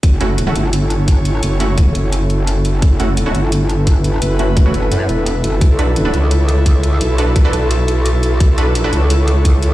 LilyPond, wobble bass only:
\new Staff \with { instrumentName = "Wobble bass" } { \clef bass \time 4/4 \key fis \phrygian \tempo 4 = 172 fis,,4. g,,2~ g,,8 | fis,,4. fis,,2~ fis,,8 | fis,,4. g,,2~ g,,8 | fis,,4. fis,,8 fis,8 e,,4 fis,,8 |
b,,4. cis,2~ cis,8 | b,,4. b,,2~ b,,8 | b,,4. cis,2~ cis,8 | }